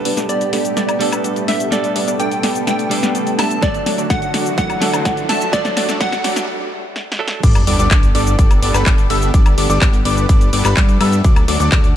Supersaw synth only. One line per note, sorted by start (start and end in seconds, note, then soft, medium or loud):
0.05 0.15 G3 medium
0.05 0.15 B3 medium
0.05 0.15 D4 medium
0.05 0.15 A4 medium
0.05 0.15 D5 medium
0.17 0.26 G3 medium
0.17 0.26 B3 medium
0.17 0.26 D4 medium
0.17 0.26 A4 medium
0.17 0.26 D5 loud
0.29 0.45 G3 medium
0.29 0.45 B3 medium
0.29 0.45 D4 medium
0.29 0.45 A4 medium
0.29 0.45 D5 medium
0.53 0.74 G3 medium
0.53 0.74 B3 medium
0.53 0.74 D4 medium
0.53 0.74 A4 medium
0.53 0.74 D5 loud
0.77 0.98 G3 medium
0.77 0.98 B3 medium
0.77 0.98 D4 medium
0.77 0.98 A4 medium
0.77 0.98 D5 medium
1.01 1.11 G3 medium
1.01 1.11 B3 medium
1.01 1.11 D4 medium
1.01 1.11 A4 medium
1.01 1.11 D5 medium
1.12 1.23 G3 medium
1.12 1.23 B3 medium
1.12 1.23 D4 medium
1.12 1.23 A4 medium
1.12 1.23 B4 loud
1.24 1.45 G3 medium
1.24 1.45 B3 medium
1.24 1.45 D4 medium
1.24 1.45 A4 medium
1.24 1.45 D5 medium
1.48 1.69 G3 loud
1.48 1.69 B3 medium
1.48 1.69 D4 medium
1.48 1.69 A4 medium
1.48 1.69 E5 loud
1.72 1.93 G3 medium
1.72 1.93 B3 medium
1.72 1.93 D4 medium
1.72 1.93 A4 medium
1.72 1.93 D5 medium
1.96 2.06 G3 medium
1.96 2.06 B3 medium
1.96 2.06 D4 medium
1.96 2.06 A4 medium
1.96 2.06 D5 medium
2.08 2.17 G3 medium
2.08 2.17 B3 medium
2.08 2.17 D4 medium
2.08 2.17 A4 medium
2.08 2.17 D5 loud
2.20 2.36 G3 medium
2.20 2.36 B3 medium
2.20 2.36 D4 medium
2.20 2.36 A4 medium
2.20 2.36 D5 loud
2.43 2.64 G3 medium
2.43 2.64 B3 medium
2.43 2.64 D4 medium
2.43 2.64 A4 medium
2.43 2.64 D5 loud
2.67 2.88 G3 medium
2.67 2.88 B3 medium
2.67 2.88 D4 medium
2.67 2.88 A4 medium
2.67 2.88 D5 medium
2.91 3.01 G3 medium
2.91 3.01 B3 medium
2.91 3.01 D4 medium
2.91 3.01 A4 medium
2.91 3.01 D5 medium
3.03 3.13 G3 medium
3.03 3.13 B3 medium
3.03 3.13 D4 medium
3.03 3.13 A4 medium
3.03 3.13 B4 loud
3.15 3.36 G3 medium
3.15 3.36 B3 medium
3.15 3.36 D4 medium
3.15 3.36 A4 medium
3.15 3.36 D5 medium
3.39 3.60 G3 loud
3.39 3.60 B3 medium
3.39 3.60 D4 medium
3.39 3.60 A4 medium
3.39 3.60 E5 loud
3.62 3.83 F#3 medium
3.62 3.83 A3 medium
3.62 3.83 D4 medium
3.62 3.83 A4 medium
3.62 3.83 D5 medium
3.86 3.96 F#3 medium
3.86 3.96 A3 medium
3.86 3.96 D4 medium
3.86 3.96 A4 medium
3.86 3.96 D5 loud
3.98 4.07 F#3 loud
3.98 4.07 A3 medium
3.98 4.07 D4 medium
3.98 4.07 A4 medium
3.98 4.07 D5 loud
4.10 4.26 F#3 medium
4.10 4.26 A3 medium
4.10 4.26 D4 medium
4.10 4.26 A4 medium
4.10 4.26 D5 medium
4.34 4.55 F#3 medium
4.34 4.55 A3 medium
4.34 4.55 D4 medium
4.34 4.55 A4 medium
4.34 4.55 D5 loud
4.58 4.79 F#3 medium
4.58 4.79 A3 medium
4.58 4.79 D4 medium
4.58 4.79 A4 medium
4.58 4.79 D5 medium
4.82 4.92 F#3 medium
4.82 4.92 A3 medium
4.82 4.92 D4 medium
4.82 4.92 A4 medium
4.82 4.92 D5 medium
4.93 5.04 F#3 medium
4.93 5.04 A3 medium
4.93 5.04 D4 medium
4.93 5.04 A4 medium
4.93 5.04 C5 loud
5.05 5.26 F#3 medium
5.05 5.26 A3 medium
5.05 5.26 D4 medium
5.05 5.26 D5 medium
5.29 5.50 F#3 loud
5.29 5.50 A3 loud
5.29 5.50 D4 medium
5.29 5.50 A4 medium
5.29 5.50 E5 loud
5.53 5.74 F#3 medium
5.53 5.74 A3 medium
5.53 5.74 D4 medium
5.53 5.74 A4 medium
5.53 5.74 D5 medium
5.77 5.87 F#3 medium
5.77 5.87 A3 medium
5.77 5.87 D4 medium
5.77 5.87 A4 medium
5.77 5.87 D5 loud
5.89 5.98 F#3 loud
5.89 5.98 A3 medium
5.89 5.98 D4 medium
5.89 5.98 A4 medium
5.89 5.98 D5 loud
6.01 6.17 F#3 medium
6.01 6.17 D4 medium
6.01 6.17 D5 medium
6.24 6.45 F#3 medium
6.24 6.45 A3 medium
6.24 6.45 D4 medium
6.24 6.45 A4 medium
6.24 6.45 D5 loud
7.43 7.64 G3 medium
7.43 7.64 B3 medium
7.43 7.64 D4 medium
7.43 7.64 A4 medium
7.43 7.64 D5 medium
7.67 7.77 G3 medium
7.67 7.77 B3 medium
7.67 7.77 D4 medium
7.67 7.77 A4 medium
7.67 7.77 D5 loud
7.79 7.88 G3 medium
7.79 7.88 B3 medium
7.79 7.88 D4 medium
7.79 7.88 A4 medium
7.79 7.88 D5 loud
7.91 8.07 G3 medium
7.91 8.07 B3 medium
7.91 8.07 D4 medium
7.91 8.07 A4 medium
8.15 8.36 G3 medium
8.15 8.36 B3 medium
8.15 8.36 D4 medium
8.15 8.36 A4 medium
8.15 8.36 D5 loud
8.39 8.60 G3 medium
8.39 8.60 B3 medium
8.39 8.60 D4 medium
8.39 8.60 A4 medium
8.39 8.60 D5 medium
8.62 8.73 G3 medium
8.62 8.73 B3 medium
8.62 8.73 D4 medium
8.62 8.73 A4 medium
8.62 8.73 D5 loud
8.74 8.85 G3 medium
8.74 8.85 B3 medium
8.74 8.85 D4 medium
8.74 8.85 A4 medium
8.74 8.85 B4 loud
9.10 9.31 G3 loud
9.10 9.31 B3 medium
9.10 9.31 D4 medium
9.10 9.31 A4 medium
9.10 9.31 E5 loud
9.34 9.55 G3 medium
9.34 9.55 B3 medium
9.34 9.55 D4 medium
9.34 9.55 A4 medium
9.34 9.55 D5 medium
9.58 9.68 G3 medium
9.58 9.68 B3 medium
9.58 9.68 D4 medium
9.58 9.68 A4 medium
9.58 9.68 D5 loud
9.70 9.79 G3 loud
9.70 9.79 B3 medium
9.70 9.79 D4 medium
9.70 9.79 A4 medium
9.70 9.79 D5 loud
9.82 9.98 G3 medium
9.82 9.98 D4 medium
9.82 9.98 D5 medium
10.05 10.26 G3 medium
10.05 10.26 B3 medium
10.05 10.26 D4 medium
10.05 10.26 A4 medium
10.05 10.26 D5 loud
10.29 10.50 G3 medium
10.29 10.50 B3 medium
10.29 10.50 D4 medium
10.29 10.50 A4 medium
10.29 10.50 D5 loud
10.53 10.63 G3 medium
10.53 10.63 B3 medium
10.53 10.63 D4 medium
10.53 10.63 A4 medium
10.53 10.63 D5 medium
10.65 10.75 G3 loud
10.65 10.75 B3 medium
10.65 10.75 D4 medium
10.65 10.75 A4 medium
10.65 10.75 B4 loud
10.77 10.98 D4 medium
10.77 10.98 A4 medium
11.01 11.22 G3 loud
11.01 11.22 B3 medium
11.01 11.22 D4 medium
11.01 11.22 A4 medium
11.01 11.22 E5 loud
11.24 11.45 F#3 medium
11.24 11.45 A3 medium
11.24 11.45 D4 medium
11.24 11.45 A4 medium
11.24 11.45 D5 medium
11.48 11.58 F#3 medium
11.48 11.58 A3 medium
11.48 11.58 D4 medium
11.48 11.58 A4 medium
11.48 11.58 D5 loud
11.60 11.69 F#3 loud
11.60 11.69 A3 medium
11.60 11.69 D4 medium
11.60 11.69 A4 medium
11.60 11.69 D5 loud
11.72 11.88 F#3 medium
11.72 11.88 A3 medium
11.72 11.88 D4 medium
11.72 11.88 A4 medium